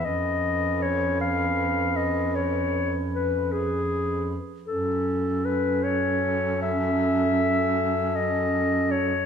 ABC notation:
X:1
M:12/8
L:1/8
Q:3/8=52
K:C#m
V:1 name="Clarinet"
d2 c ^e2 d c2 B G2 z | A2 B c2 e4 d2 c |]
V:2 name="Alto saxophone"
B8- B3 z | A12 |]
V:3 name="Clarinet"
C8- C3 z | C12 |]
V:4 name="Baritone saxophone" clef=bass
^E,,8- E,,3 z | F,,12 |]